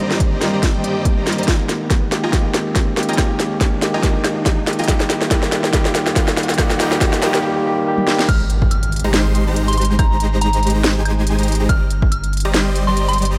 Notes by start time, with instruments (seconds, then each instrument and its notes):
Already playing: tine electric piano D3 D#3 A#3 C4 D4 D#4, supersaw synth G3 G4 C5 D5 D#5 A#5, riser
0.11 snare
0.20 kick, closed hi-hat
0.40 tine electric piano D#3 A#3 C4, snare, closed hi-hat
0.44 tine electric piano D#4
0.53 supersaw synth G3 G4 C5 D5 D#5 A#5
0.63 kick, snare, closed hi-hat
0.75 supersaw synth G3 G4 C5 D5 D#5 G5
0.84 closed hi-hat
1.05 kick, closed hi-hat
1.17 supersaw synth G3 G4 C5 D5 D#5 A#5
1.27 snare, closed hi-hat
1.32 closed hi-hat
1.38 supersaw synth G3 G4 C5 D5 D#5 A#5, closed hi-hat
1.43 tine electric piano D#3, closed hi-hat
1.48 tine electric piano G#3 A#3 G4, supersaw synth F4 D#5 G5 G#5 A#5, kick, snare, closed hi-hat
1.69 snare, closed hi-hat
1.90 kick, snare, closed hi-hat
2.11 tine electric piano D#3 G#3 A#3 G4, snare, closed hi-hat
2.23 supersaw synth F4 D#5 G5 G#5 A#5
2.31 tine electric piano D#3 G#3 A#3 G4, supersaw synth F4 D#5 G5 G#5 A#5, kick, snare, closed hi-hat
2.54 snare, closed hi-hat
2.75 kick, snare, closed hi-hat
2.96 tine electric piano D#3 G#3 A#3 G4, snare, closed hi-hat
3.03 closed hi-hat
3.09 supersaw synth F4 D#5 G5 G#5 A#5, closed hi-hat
3.13 tine electric piano D#3, closed hi-hat
3.18 tine electric piano G#3 A#3 G4, supersaw synth D#5 A#5, kick, snare, closed hi-hat, high woodblock
3.40 snare, closed hi-hat
3.61 kick, snare, closed hi-hat
3.81 tine electric piano D#3 G#3 A#3 G4, snare, closed hi-hat
3.94 supersaw synth F4 D#5 G5 G#5 A#5
4.01 tine electric piano D#3 G#3 A#3, supersaw synth F4 D#5, kick, snare, closed hi-hat
4.06 tine electric piano G4
4.24 snare, closed hi-hat, high woodblock
4.46 kick, snare, closed hi-hat
4.66 tine electric piano D#3 G#3 A#3 G4, snare, closed hi-hat
4.73 closed hi-hat
4.79 supersaw synth F4 D#5 G5 G#5 A#5, closed hi-hat
4.84 tine electric piano D#3, closed hi-hat
4.88 tine electric piano G3 A#3 G4, supersaw synth F4, kick, snare, closed hi-hat
5.00 snare
5.10 snare, closed hi-hat
5.21 snare
5.29 tine electric piano D#3 G3 A#3, supersaw synth F4 D#5 G5 A#5, kick, snare, closed hi-hat
5.33 tine electric piano G4
5.43 snare
5.52 snare, closed hi-hat
5.64 snare
5.71 tine electric piano D#3 G3 A#3 G4, supersaw synth F4 D#5 G5 A#5, kick, snare, closed hi-hat
5.85 snare
5.95 snare, closed hi-hat
6.06 snare
6.14 tine electric piano D#3 G3 A#3, supersaw synth F4 D#5 G5 A#5, kick, snare, closed hi-hat
6.18 tine electric piano G4
6.28 snare
6.37 snare, closed hi-hat
6.43 closed hi-hat
6.49 snare, closed hi-hat
6.54 tine electric piano D#3, closed hi-hat
6.58 tine electric piano G3 A#3 G4, supersaw synth F4 D#5 G5 A#5, kick, snare, closed hi-hat, high woodblock
6.70 snare
6.78 tine electric piano D#3 G3 A#3, supersaw synth F4 D#5 G5 A#5, snare, closed hi-hat
6.82 tine electric piano G4
6.92 snare
6.99 tine electric piano D#3 G3 A#3, supersaw synth F4 D#5 G5, kick, snare, closed hi-hat
7.03 tine electric piano G4
7.13 snare
7.20 tine electric piano D#3 G3 A#3 G4, supersaw synth F4 D#5 G5 A#5, snare, closed hi-hat
7.34 snare
7.42 tine electric piano D#3 G3 A#3
7.46 tine electric piano G4
7.63 tine electric piano D#3 G3 A#3
7.67 tine electric piano G4
7.84 tine electric piano D#3 G3 A#3 G4
7.98 high tom
8.06 tine electric piano D#3 G3 A#3 G4, snare
8.19 snare
8.29 sub bass G#1, supersaw synth G#3 D#4 G4 C5 A#5, synth bell F6, kick, closed hi-hat, crash, impact
8.50 closed hi-hat
8.62 kick
8.71 synth bell F6, closed hi-hat
8.83 closed hi-hat
8.92 closed hi-hat
8.96 closed hi-hat
9.00 closed hi-hat
9.04 supersaw synth G#3 D#4 G4 C5 A#5
9.14 supersaw synth G#3 D#4 G4 C5 C6, snare, closed hi-hat
9.35 closed hi-hat
9.47 supersaw synth G#3 D#4 G4 C5 A#5
9.56 closed hi-hat
9.68 synth bell C6, closed hi-hat
9.73 closed hi-hat
9.77 supersaw synth G#3 D#4 G4 C5 A#5, synth bell C6, closed hi-hat
9.81 closed hi-hat
9.85 closed hi-hat
9.99 synth bell A#5, kick, closed hi-hat, high woodblock
10.20 closed hi-hat
10.41 synth bell A#5, closed hi-hat
10.53 closed hi-hat
10.63 closed hi-hat
10.67 closed hi-hat
10.70 closed hi-hat
10.75 supersaw synth G#3 D#4 G4 C5 A#5
10.84 supersaw synth G#3 D#4 G4 C5 C6, snare, closed hi-hat
10.96 supersaw synth G#3 D#4 G4 C5 G#5
11.05 closed hi-hat, high woodblock
11.27 closed hi-hat
11.39 supersaw synth G#3 D#4 G4 C5 A#5, closed hi-hat
11.43 closed hi-hat
11.48 closed hi-hat
11.52 closed hi-hat
11.55 closed hi-hat
11.60 supersaw synth G#3 D#4 G4 C5 A#5
11.69 sub bass G1, supersaw synth G3 G4 C5 D#5 A#5, synth bell F6, kick, closed hi-hat
11.90 closed hi-hat
12.02 kick
12.12 synth bell F6, closed hi-hat
12.24 closed hi-hat
12.33 closed hi-hat
12.37 closed hi-hat
12.40 closed hi-hat
12.45 supersaw synth G3 G4 C5 D5 D#5 A#5
12.54 supersaw synth G3 G4 C5 D5 D#5 C6, snare, closed hi-hat
12.76 closed hi-hat
12.87 supersaw synth G3 G4 C5 D5 D#5 A#5, synth bell C6
12.97 closed hi-hat
13.09 synth bell C6, closed hi-hat
13.13 closed hi-hat
13.18 supersaw synth G3 G4 C5 D5 D#5 A#5, closed hi-hat
13.22 closed hi-hat
13.25 closed hi-hat